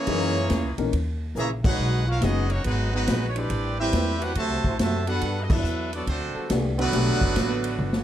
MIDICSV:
0, 0, Header, 1, 8, 480
1, 0, Start_track
1, 0, Key_signature, 1, "major"
1, 0, Tempo, 428878
1, 77, Time_signature, 4, 2, 24, 8
1, 8994, End_track
2, 0, Start_track
2, 0, Title_t, "Trumpet section"
2, 0, Program_c, 0, 61
2, 0, Note_on_c, 0, 58, 102
2, 0, Note_on_c, 0, 64, 88
2, 0, Note_on_c, 0, 68, 102
2, 0, Note_on_c, 0, 73, 119
2, 832, Note_off_c, 0, 58, 0
2, 832, Note_off_c, 0, 73, 0
2, 833, Note_off_c, 0, 64, 0
2, 833, Note_off_c, 0, 68, 0
2, 1543, Note_on_c, 0, 73, 83
2, 1543, Note_on_c, 0, 76, 84
2, 1546, Note_on_c, 0, 68, 81
2, 1550, Note_on_c, 0, 82, 97
2, 1680, Note_off_c, 0, 73, 0
2, 1680, Note_off_c, 0, 76, 0
2, 1682, Note_off_c, 0, 68, 0
2, 1685, Note_off_c, 0, 82, 0
2, 1852, Note_on_c, 0, 68, 93
2, 1854, Note_on_c, 0, 78, 111
2, 1856, Note_on_c, 0, 71, 86
2, 1858, Note_on_c, 0, 63, 89
2, 2290, Note_off_c, 0, 68, 0
2, 2291, Note_off_c, 0, 71, 0
2, 2291, Note_off_c, 0, 78, 0
2, 2292, Note_off_c, 0, 63, 0
2, 2330, Note_on_c, 0, 77, 102
2, 2331, Note_on_c, 0, 66, 90
2, 2331, Note_on_c, 0, 70, 91
2, 2332, Note_on_c, 0, 61, 84
2, 2474, Note_off_c, 0, 66, 0
2, 2474, Note_off_c, 0, 70, 0
2, 2474, Note_off_c, 0, 77, 0
2, 2475, Note_off_c, 0, 61, 0
2, 2485, Note_on_c, 0, 68, 89
2, 2487, Note_on_c, 0, 59, 90
2, 2491, Note_on_c, 0, 75, 96
2, 2492, Note_on_c, 0, 66, 86
2, 2797, Note_off_c, 0, 66, 0
2, 2798, Note_off_c, 0, 68, 0
2, 2799, Note_off_c, 0, 59, 0
2, 2800, Note_off_c, 0, 75, 0
2, 2804, Note_on_c, 0, 63, 87
2, 2804, Note_on_c, 0, 73, 93
2, 2805, Note_on_c, 0, 58, 86
2, 2810, Note_on_c, 0, 66, 81
2, 2955, Note_off_c, 0, 66, 0
2, 2957, Note_off_c, 0, 63, 0
2, 2962, Note_off_c, 0, 58, 0
2, 2962, Note_off_c, 0, 73, 0
2, 2969, Note_on_c, 0, 66, 89
2, 2970, Note_on_c, 0, 63, 89
2, 2970, Note_on_c, 0, 71, 103
2, 2972, Note_on_c, 0, 56, 91
2, 3257, Note_off_c, 0, 66, 0
2, 3258, Note_off_c, 0, 63, 0
2, 3258, Note_off_c, 0, 71, 0
2, 3259, Note_off_c, 0, 56, 0
2, 3290, Note_on_c, 0, 66, 82
2, 3294, Note_on_c, 0, 71, 97
2, 3295, Note_on_c, 0, 63, 84
2, 3296, Note_on_c, 0, 56, 90
2, 3633, Note_off_c, 0, 66, 0
2, 3635, Note_off_c, 0, 63, 0
2, 3635, Note_off_c, 0, 71, 0
2, 3636, Note_off_c, 0, 56, 0
2, 3673, Note_on_c, 0, 73, 68
2, 3764, Note_off_c, 0, 73, 0
2, 3774, Note_on_c, 0, 60, 79
2, 3776, Note_on_c, 0, 67, 84
2, 3776, Note_on_c, 0, 71, 79
2, 3780, Note_on_c, 0, 74, 103
2, 4238, Note_off_c, 0, 71, 0
2, 4240, Note_off_c, 0, 60, 0
2, 4244, Note_off_c, 0, 67, 0
2, 4246, Note_off_c, 0, 74, 0
2, 4249, Note_on_c, 0, 76, 106
2, 4252, Note_on_c, 0, 71, 88
2, 4253, Note_on_c, 0, 60, 87
2, 4256, Note_on_c, 0, 67, 93
2, 4688, Note_off_c, 0, 76, 0
2, 4689, Note_off_c, 0, 71, 0
2, 4690, Note_off_c, 0, 60, 0
2, 4692, Note_off_c, 0, 67, 0
2, 4727, Note_on_c, 0, 71, 79
2, 4727, Note_on_c, 0, 78, 97
2, 4728, Note_on_c, 0, 62, 85
2, 4728, Note_on_c, 0, 67, 82
2, 4882, Note_on_c, 0, 81, 120
2, 4883, Note_off_c, 0, 71, 0
2, 4883, Note_off_c, 0, 78, 0
2, 4883, Note_on_c, 0, 66, 92
2, 4884, Note_off_c, 0, 62, 0
2, 4884, Note_off_c, 0, 67, 0
2, 4884, Note_on_c, 0, 72, 106
2, 4885, Note_on_c, 0, 76, 89
2, 5325, Note_off_c, 0, 81, 0
2, 5326, Note_off_c, 0, 66, 0
2, 5327, Note_off_c, 0, 72, 0
2, 5327, Note_off_c, 0, 76, 0
2, 5371, Note_on_c, 0, 72, 75
2, 5372, Note_on_c, 0, 66, 79
2, 5373, Note_on_c, 0, 81, 87
2, 5375, Note_on_c, 0, 76, 84
2, 5659, Note_off_c, 0, 72, 0
2, 5660, Note_off_c, 0, 66, 0
2, 5660, Note_off_c, 0, 81, 0
2, 5661, Note_off_c, 0, 76, 0
2, 5674, Note_on_c, 0, 71, 83
2, 5677, Note_on_c, 0, 62, 90
2, 5677, Note_on_c, 0, 78, 97
2, 5678, Note_on_c, 0, 69, 80
2, 6024, Note_off_c, 0, 71, 0
2, 6026, Note_off_c, 0, 62, 0
2, 6026, Note_off_c, 0, 78, 0
2, 6027, Note_off_c, 0, 69, 0
2, 6061, Note_on_c, 0, 75, 72
2, 6159, Note_off_c, 0, 75, 0
2, 6167, Note_on_c, 0, 69, 84
2, 6168, Note_on_c, 0, 62, 89
2, 6171, Note_on_c, 0, 76, 97
2, 6173, Note_on_c, 0, 71, 90
2, 6623, Note_off_c, 0, 69, 0
2, 6632, Note_on_c, 0, 66, 77
2, 6636, Note_on_c, 0, 69, 78
2, 6638, Note_on_c, 0, 74, 88
2, 6640, Note_off_c, 0, 62, 0
2, 6640, Note_on_c, 0, 59, 83
2, 6642, Note_off_c, 0, 76, 0
2, 6643, Note_off_c, 0, 71, 0
2, 6784, Note_off_c, 0, 66, 0
2, 6786, Note_off_c, 0, 69, 0
2, 6787, Note_off_c, 0, 74, 0
2, 6789, Note_off_c, 0, 59, 0
2, 6809, Note_on_c, 0, 57, 78
2, 6809, Note_on_c, 0, 62, 82
2, 6809, Note_on_c, 0, 66, 80
2, 6809, Note_on_c, 0, 72, 87
2, 7250, Note_off_c, 0, 57, 0
2, 7250, Note_off_c, 0, 62, 0
2, 7250, Note_off_c, 0, 66, 0
2, 7250, Note_off_c, 0, 72, 0
2, 7609, Note_on_c, 0, 71, 121
2, 7610, Note_on_c, 0, 57, 107
2, 7611, Note_on_c, 0, 66, 109
2, 7615, Note_on_c, 0, 62, 102
2, 8994, Note_off_c, 0, 57, 0
2, 8994, Note_off_c, 0, 62, 0
2, 8994, Note_off_c, 0, 66, 0
2, 8994, Note_off_c, 0, 71, 0
2, 8994, End_track
3, 0, Start_track
3, 0, Title_t, "Trombone section"
3, 0, Program_c, 1, 61
3, 81, Note_on_c, 1, 56, 107
3, 88, Note_on_c, 1, 70, 118
3, 89, Note_on_c, 1, 61, 94
3, 93, Note_on_c, 1, 64, 98
3, 812, Note_off_c, 1, 56, 0
3, 815, Note_off_c, 1, 70, 0
3, 816, Note_off_c, 1, 61, 0
3, 818, Note_off_c, 1, 64, 0
3, 1826, Note_on_c, 1, 66, 89
3, 1832, Note_on_c, 1, 73, 108
3, 1836, Note_on_c, 1, 56, 98
3, 1836, Note_on_c, 1, 63, 90
3, 1938, Note_off_c, 1, 66, 0
3, 1942, Note_off_c, 1, 73, 0
3, 1945, Note_off_c, 1, 56, 0
3, 1945, Note_off_c, 1, 63, 0
3, 3299, Note_on_c, 1, 56, 100
3, 3300, Note_on_c, 1, 63, 97
3, 3303, Note_on_c, 1, 66, 101
3, 3306, Note_on_c, 1, 71, 120
3, 3896, Note_off_c, 1, 56, 0
3, 3897, Note_off_c, 1, 63, 0
3, 3898, Note_off_c, 1, 66, 0
3, 3900, Note_off_c, 1, 71, 0
3, 4719, Note_on_c, 1, 71, 115
3, 4721, Note_on_c, 1, 54, 99
3, 4721, Note_on_c, 1, 60, 92
3, 4722, Note_on_c, 1, 64, 88
3, 4827, Note_off_c, 1, 71, 0
3, 4828, Note_off_c, 1, 54, 0
3, 4828, Note_off_c, 1, 60, 0
3, 4829, Note_off_c, 1, 64, 0
3, 5196, Note_on_c, 1, 60, 83
3, 5204, Note_on_c, 1, 64, 87
3, 5208, Note_on_c, 1, 72, 100
3, 5209, Note_on_c, 1, 54, 96
3, 5305, Note_off_c, 1, 60, 0
3, 5310, Note_off_c, 1, 64, 0
3, 5313, Note_off_c, 1, 54, 0
3, 5313, Note_off_c, 1, 72, 0
3, 5660, Note_on_c, 1, 59, 102
3, 5661, Note_on_c, 1, 55, 100
3, 5667, Note_on_c, 1, 69, 118
3, 5672, Note_on_c, 1, 66, 97
3, 6277, Note_off_c, 1, 59, 0
3, 6278, Note_off_c, 1, 55, 0
3, 6280, Note_off_c, 1, 69, 0
3, 6283, Note_off_c, 1, 66, 0
3, 7102, Note_on_c, 1, 69, 101
3, 7103, Note_on_c, 1, 59, 89
3, 7106, Note_on_c, 1, 66, 88
3, 7108, Note_on_c, 1, 55, 89
3, 7718, Note_off_c, 1, 69, 0
3, 7719, Note_off_c, 1, 59, 0
3, 7720, Note_off_c, 1, 66, 0
3, 7722, Note_off_c, 1, 55, 0
3, 8994, End_track
4, 0, Start_track
4, 0, Title_t, "Grand piano"
4, 0, Program_c, 2, 0
4, 76, Note_on_c, 2, 58, 66
4, 77, Note_on_c, 2, 52, 70
4, 81, Note_on_c, 2, 61, 65
4, 86, Note_on_c, 2, 63, 61
4, 87, Note_on_c, 2, 68, 75
4, 362, Note_off_c, 2, 52, 0
4, 362, Note_off_c, 2, 58, 0
4, 364, Note_off_c, 2, 61, 0
4, 366, Note_off_c, 2, 63, 0
4, 367, Note_off_c, 2, 68, 0
4, 874, Note_on_c, 2, 52, 67
4, 878, Note_on_c, 2, 58, 65
4, 879, Note_on_c, 2, 61, 68
4, 880, Note_on_c, 2, 70, 81
4, 885, Note_on_c, 2, 63, 62
4, 1020, Note_off_c, 2, 52, 0
4, 1022, Note_off_c, 2, 58, 0
4, 1023, Note_off_c, 2, 61, 0
4, 1023, Note_off_c, 2, 70, 0
4, 1026, Note_off_c, 2, 63, 0
4, 2490, Note_on_c, 2, 54, 60
4, 2491, Note_on_c, 2, 61, 58
4, 2495, Note_on_c, 2, 59, 58
4, 2495, Note_on_c, 2, 63, 55
4, 2497, Note_on_c, 2, 68, 68
4, 2768, Note_off_c, 2, 54, 0
4, 2768, Note_off_c, 2, 61, 0
4, 2770, Note_off_c, 2, 59, 0
4, 2771, Note_off_c, 2, 63, 0
4, 2771, Note_off_c, 2, 68, 0
4, 4406, Note_on_c, 2, 60, 57
4, 4407, Note_on_c, 2, 57, 56
4, 4410, Note_on_c, 2, 64, 51
4, 4413, Note_on_c, 2, 67, 53
4, 4416, Note_on_c, 2, 71, 66
4, 4686, Note_off_c, 2, 60, 0
4, 4687, Note_off_c, 2, 57, 0
4, 4688, Note_off_c, 2, 64, 0
4, 4689, Note_off_c, 2, 67, 0
4, 4691, Note_off_c, 2, 71, 0
4, 7283, Note_on_c, 2, 57, 66
4, 7285, Note_on_c, 2, 62, 58
4, 7287, Note_on_c, 2, 66, 60
4, 7288, Note_on_c, 2, 67, 61
4, 7292, Note_on_c, 2, 71, 73
4, 7565, Note_off_c, 2, 57, 0
4, 7566, Note_off_c, 2, 62, 0
4, 7567, Note_off_c, 2, 66, 0
4, 7567, Note_off_c, 2, 67, 0
4, 7570, Note_off_c, 2, 71, 0
4, 7759, Note_on_c, 2, 57, 70
4, 7763, Note_on_c, 2, 62, 67
4, 7767, Note_on_c, 2, 66, 60
4, 7767, Note_on_c, 2, 67, 69
4, 7767, Note_on_c, 2, 71, 76
4, 8043, Note_off_c, 2, 57, 0
4, 8045, Note_off_c, 2, 62, 0
4, 8047, Note_off_c, 2, 66, 0
4, 8047, Note_off_c, 2, 71, 0
4, 8048, Note_off_c, 2, 67, 0
4, 8994, End_track
5, 0, Start_track
5, 0, Title_t, "Trombone section"
5, 0, Program_c, 3, 61
5, 0, Note_on_c, 3, 52, 105
5, 0, Note_on_c, 3, 58, 110
5, 0, Note_on_c, 3, 61, 112
5, 825, Note_off_c, 3, 61, 0
5, 827, Note_off_c, 3, 52, 0
5, 828, Note_off_c, 3, 58, 0
5, 1522, Note_on_c, 3, 58, 92
5, 1527, Note_on_c, 3, 52, 102
5, 1528, Note_on_c, 3, 49, 94
5, 1664, Note_off_c, 3, 58, 0
5, 1667, Note_off_c, 3, 52, 0
5, 1668, Note_off_c, 3, 49, 0
5, 1839, Note_on_c, 3, 56, 100
5, 1840, Note_on_c, 3, 66, 102
5, 1842, Note_on_c, 3, 63, 106
5, 2282, Note_off_c, 3, 56, 0
5, 2283, Note_off_c, 3, 66, 0
5, 2284, Note_off_c, 3, 63, 0
5, 2318, Note_on_c, 3, 65, 90
5, 2467, Note_off_c, 3, 65, 0
5, 2474, Note_on_c, 3, 56, 92
5, 2478, Note_on_c, 3, 63, 83
5, 2479, Note_on_c, 3, 54, 96
5, 2792, Note_off_c, 3, 56, 0
5, 2794, Note_off_c, 3, 54, 0
5, 2794, Note_off_c, 3, 63, 0
5, 2799, Note_on_c, 3, 61, 78
5, 2955, Note_on_c, 3, 56, 81
5, 2959, Note_off_c, 3, 61, 0
5, 2961, Note_on_c, 3, 54, 82
5, 2961, Note_on_c, 3, 59, 82
5, 3250, Note_off_c, 3, 56, 0
5, 3253, Note_off_c, 3, 54, 0
5, 3253, Note_off_c, 3, 59, 0
5, 3277, Note_on_c, 3, 56, 80
5, 3278, Note_on_c, 3, 59, 83
5, 3279, Note_on_c, 3, 54, 81
5, 3626, Note_off_c, 3, 56, 0
5, 3627, Note_off_c, 3, 54, 0
5, 3627, Note_off_c, 3, 59, 0
5, 3757, Note_on_c, 3, 52, 98
5, 3759, Note_on_c, 3, 62, 102
5, 3762, Note_on_c, 3, 55, 93
5, 4235, Note_off_c, 3, 52, 0
5, 4236, Note_off_c, 3, 62, 0
5, 4237, Note_off_c, 3, 55, 0
5, 4251, Note_on_c, 3, 60, 92
5, 4256, Note_on_c, 3, 55, 89
5, 4257, Note_on_c, 3, 64, 86
5, 4689, Note_off_c, 3, 60, 0
5, 4692, Note_off_c, 3, 55, 0
5, 4692, Note_off_c, 3, 64, 0
5, 4716, Note_on_c, 3, 66, 80
5, 4877, Note_off_c, 3, 66, 0
5, 4880, Note_on_c, 3, 54, 96
5, 4887, Note_on_c, 3, 48, 91
5, 4887, Note_on_c, 3, 57, 92
5, 5325, Note_off_c, 3, 54, 0
5, 5328, Note_off_c, 3, 48, 0
5, 5328, Note_off_c, 3, 57, 0
5, 5361, Note_on_c, 3, 57, 96
5, 5364, Note_on_c, 3, 54, 93
5, 5367, Note_on_c, 3, 48, 94
5, 5653, Note_off_c, 3, 57, 0
5, 5655, Note_off_c, 3, 54, 0
5, 5657, Note_off_c, 3, 48, 0
5, 5670, Note_on_c, 3, 59, 92
5, 5673, Note_on_c, 3, 62, 92
5, 5679, Note_on_c, 3, 66, 98
5, 6022, Note_off_c, 3, 59, 0
5, 6024, Note_off_c, 3, 62, 0
5, 6027, Note_off_c, 3, 66, 0
5, 6169, Note_on_c, 3, 64, 88
5, 6170, Note_on_c, 3, 59, 93
5, 6176, Note_on_c, 3, 54, 92
5, 6641, Note_off_c, 3, 54, 0
5, 6641, Note_off_c, 3, 59, 0
5, 6641, Note_off_c, 3, 64, 0
5, 6654, Note_on_c, 3, 54, 70
5, 6654, Note_on_c, 3, 62, 78
5, 6655, Note_on_c, 3, 59, 80
5, 6779, Note_off_c, 3, 54, 0
5, 6792, Note_on_c, 3, 54, 78
5, 6794, Note_on_c, 3, 60, 68
5, 6796, Note_off_c, 3, 62, 0
5, 6797, Note_off_c, 3, 59, 0
5, 6800, Note_on_c, 3, 50, 76
5, 7241, Note_off_c, 3, 54, 0
5, 7241, Note_off_c, 3, 60, 0
5, 7245, Note_off_c, 3, 50, 0
5, 7591, Note_on_c, 3, 59, 125
5, 7592, Note_on_c, 3, 50, 121
5, 7592, Note_on_c, 3, 54, 123
5, 8994, Note_off_c, 3, 50, 0
5, 8994, Note_off_c, 3, 54, 0
5, 8994, Note_off_c, 3, 59, 0
5, 8994, End_track
6, 0, Start_track
6, 0, Title_t, "Upright bass"
6, 0, Program_c, 4, 32
6, 81, Note_on_c, 4, 42, 101
6, 544, Note_off_c, 4, 42, 0
6, 561, Note_on_c, 4, 40, 93
6, 717, Note_off_c, 4, 40, 0
6, 717, Note_on_c, 4, 37, 62
6, 865, Note_off_c, 4, 37, 0
6, 871, Note_on_c, 4, 34, 72
6, 1023, Note_off_c, 4, 34, 0
6, 1039, Note_on_c, 4, 39, 85
6, 1503, Note_off_c, 4, 39, 0
6, 1510, Note_on_c, 4, 34, 83
6, 1979, Note_off_c, 4, 34, 0
6, 1994, Note_on_c, 4, 35, 91
6, 2460, Note_off_c, 4, 35, 0
6, 2478, Note_on_c, 4, 30, 102
6, 2943, Note_off_c, 4, 30, 0
6, 2961, Note_on_c, 4, 32, 88
6, 3424, Note_off_c, 4, 32, 0
6, 3442, Note_on_c, 4, 34, 95
6, 3904, Note_off_c, 4, 34, 0
6, 3918, Note_on_c, 4, 33, 93
6, 4383, Note_off_c, 4, 33, 0
6, 4397, Note_on_c, 4, 40, 95
6, 4862, Note_off_c, 4, 40, 0
6, 4875, Note_on_c, 4, 38, 89
6, 5032, Note_off_c, 4, 38, 0
6, 5032, Note_on_c, 4, 36, 66
6, 5184, Note_off_c, 4, 36, 0
6, 5190, Note_on_c, 4, 33, 72
6, 5342, Note_off_c, 4, 33, 0
6, 5357, Note_on_c, 4, 42, 85
6, 5822, Note_off_c, 4, 42, 0
6, 5836, Note_on_c, 4, 43, 88
6, 6296, Note_off_c, 4, 43, 0
6, 6303, Note_on_c, 4, 40, 97
6, 6775, Note_off_c, 4, 40, 0
6, 6795, Note_on_c, 4, 38, 94
6, 7091, Note_off_c, 4, 38, 0
6, 7273, Note_on_c, 4, 36, 93
6, 7741, Note_off_c, 4, 36, 0
6, 7751, Note_on_c, 4, 35, 94
6, 7902, Note_on_c, 4, 31, 62
6, 7919, Note_off_c, 4, 35, 0
6, 8063, Note_off_c, 4, 31, 0
6, 8070, Note_on_c, 4, 30, 66
6, 8222, Note_off_c, 4, 30, 0
6, 8236, Note_on_c, 4, 33, 96
6, 8702, Note_off_c, 4, 33, 0
6, 8711, Note_on_c, 4, 31, 92
6, 8994, Note_off_c, 4, 31, 0
6, 8994, End_track
7, 0, Start_track
7, 0, Title_t, "Muted upright bass strokes"
7, 7103, Note_on_c, 9, 29, 44
7, 7215, Note_off_c, 9, 29, 0
7, 8994, End_track
8, 0, Start_track
8, 0, Title_t, "Drums"
8, 75, Note_on_c, 9, 51, 72
8, 82, Note_on_c, 9, 36, 24
8, 187, Note_off_c, 9, 51, 0
8, 194, Note_off_c, 9, 36, 0
8, 555, Note_on_c, 9, 44, 62
8, 555, Note_on_c, 9, 51, 79
8, 561, Note_on_c, 9, 38, 82
8, 563, Note_on_c, 9, 36, 24
8, 667, Note_off_c, 9, 44, 0
8, 667, Note_off_c, 9, 51, 0
8, 673, Note_off_c, 9, 38, 0
8, 675, Note_off_c, 9, 36, 0
8, 871, Note_on_c, 9, 51, 59
8, 983, Note_off_c, 9, 51, 0
8, 1039, Note_on_c, 9, 51, 69
8, 1044, Note_on_c, 9, 36, 24
8, 1151, Note_off_c, 9, 51, 0
8, 1156, Note_off_c, 9, 36, 0
8, 1515, Note_on_c, 9, 44, 71
8, 1627, Note_off_c, 9, 44, 0
8, 1840, Note_on_c, 9, 36, 106
8, 1842, Note_on_c, 9, 49, 93
8, 1952, Note_off_c, 9, 36, 0
8, 1954, Note_off_c, 9, 49, 0
8, 2480, Note_on_c, 9, 44, 61
8, 2480, Note_on_c, 9, 51, 84
8, 2484, Note_on_c, 9, 36, 20
8, 2486, Note_on_c, 9, 38, 81
8, 2592, Note_off_c, 9, 44, 0
8, 2592, Note_off_c, 9, 51, 0
8, 2596, Note_off_c, 9, 36, 0
8, 2598, Note_off_c, 9, 38, 0
8, 2795, Note_on_c, 9, 51, 55
8, 2907, Note_off_c, 9, 51, 0
8, 2957, Note_on_c, 9, 51, 76
8, 2964, Note_on_c, 9, 36, 28
8, 3069, Note_off_c, 9, 51, 0
8, 3076, Note_off_c, 9, 36, 0
8, 3440, Note_on_c, 9, 44, 75
8, 3440, Note_on_c, 9, 51, 93
8, 3445, Note_on_c, 9, 36, 24
8, 3446, Note_on_c, 9, 38, 89
8, 3552, Note_off_c, 9, 44, 0
8, 3552, Note_off_c, 9, 51, 0
8, 3557, Note_off_c, 9, 36, 0
8, 3558, Note_off_c, 9, 38, 0
8, 3756, Note_on_c, 9, 51, 63
8, 3868, Note_off_c, 9, 51, 0
8, 3914, Note_on_c, 9, 51, 73
8, 3921, Note_on_c, 9, 36, 25
8, 4026, Note_off_c, 9, 51, 0
8, 4033, Note_off_c, 9, 36, 0
8, 4396, Note_on_c, 9, 44, 59
8, 4396, Note_on_c, 9, 51, 83
8, 4400, Note_on_c, 9, 36, 25
8, 4402, Note_on_c, 9, 38, 75
8, 4508, Note_off_c, 9, 44, 0
8, 4508, Note_off_c, 9, 51, 0
8, 4512, Note_off_c, 9, 36, 0
8, 4514, Note_off_c, 9, 38, 0
8, 4718, Note_on_c, 9, 51, 61
8, 4830, Note_off_c, 9, 51, 0
8, 4871, Note_on_c, 9, 51, 77
8, 4879, Note_on_c, 9, 36, 30
8, 4983, Note_off_c, 9, 51, 0
8, 4991, Note_off_c, 9, 36, 0
8, 5197, Note_on_c, 9, 36, 58
8, 5308, Note_off_c, 9, 36, 0
8, 5361, Note_on_c, 9, 36, 23
8, 5363, Note_on_c, 9, 44, 74
8, 5363, Note_on_c, 9, 51, 88
8, 5368, Note_on_c, 9, 38, 90
8, 5472, Note_off_c, 9, 36, 0
8, 5475, Note_off_c, 9, 44, 0
8, 5475, Note_off_c, 9, 51, 0
8, 5480, Note_off_c, 9, 38, 0
8, 5676, Note_on_c, 9, 51, 60
8, 5788, Note_off_c, 9, 51, 0
8, 5836, Note_on_c, 9, 51, 76
8, 5838, Note_on_c, 9, 36, 22
8, 5948, Note_off_c, 9, 51, 0
8, 5949, Note_off_c, 9, 36, 0
8, 6154, Note_on_c, 9, 36, 107
8, 6157, Note_on_c, 9, 49, 96
8, 6266, Note_off_c, 9, 36, 0
8, 6269, Note_off_c, 9, 49, 0
8, 6315, Note_on_c, 9, 44, 65
8, 6427, Note_off_c, 9, 44, 0
8, 6634, Note_on_c, 9, 51, 61
8, 6746, Note_off_c, 9, 51, 0
8, 6796, Note_on_c, 9, 51, 70
8, 6797, Note_on_c, 9, 36, 27
8, 6908, Note_off_c, 9, 36, 0
8, 6908, Note_off_c, 9, 51, 0
8, 7271, Note_on_c, 9, 44, 70
8, 7271, Note_on_c, 9, 51, 86
8, 7277, Note_on_c, 9, 36, 22
8, 7277, Note_on_c, 9, 38, 93
8, 7383, Note_off_c, 9, 44, 0
8, 7383, Note_off_c, 9, 51, 0
8, 7389, Note_off_c, 9, 36, 0
8, 7389, Note_off_c, 9, 38, 0
8, 7595, Note_on_c, 9, 51, 60
8, 7707, Note_off_c, 9, 51, 0
8, 7755, Note_on_c, 9, 51, 73
8, 7758, Note_on_c, 9, 36, 22
8, 7761, Note_on_c, 9, 38, 44
8, 7867, Note_off_c, 9, 51, 0
8, 7870, Note_off_c, 9, 36, 0
8, 7873, Note_off_c, 9, 38, 0
8, 8073, Note_on_c, 9, 36, 71
8, 8185, Note_off_c, 9, 36, 0
8, 8235, Note_on_c, 9, 44, 68
8, 8235, Note_on_c, 9, 51, 78
8, 8238, Note_on_c, 9, 36, 18
8, 8241, Note_on_c, 9, 38, 83
8, 8347, Note_off_c, 9, 44, 0
8, 8347, Note_off_c, 9, 51, 0
8, 8350, Note_off_c, 9, 36, 0
8, 8353, Note_off_c, 9, 38, 0
8, 8548, Note_on_c, 9, 51, 91
8, 8660, Note_off_c, 9, 51, 0
8, 8712, Note_on_c, 9, 47, 58
8, 8824, Note_off_c, 9, 47, 0
8, 8871, Note_on_c, 9, 38, 78
8, 8983, Note_off_c, 9, 38, 0
8, 8994, End_track
0, 0, End_of_file